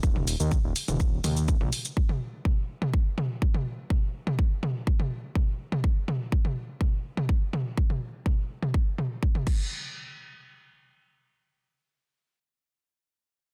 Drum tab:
CC |----------------|----------------|----------------|----------------|
HH |--o---o---o---o-|----------------|----------------|----------------|
SH |x-xxx-xxx-xxx-xx|----------------|----------------|----------------|
T2 |-o--o--o--o--o--|-o--o--o--o--o--|o--o--o--o--o--o|--o--o--o--o--o-|
BD |o---o---o---o---|o---o---o---o---|o---o---o---o---|o---o---o---o---|

CC |--------------x-|----------------|----------------|
HH |----------------|----------------|----------------|
SH |----------------|----------------|----------------|
T2 |-o--o--o--o--o--|----------------|----------------|
BD |o---o---o---o-o-|----------------|----------------|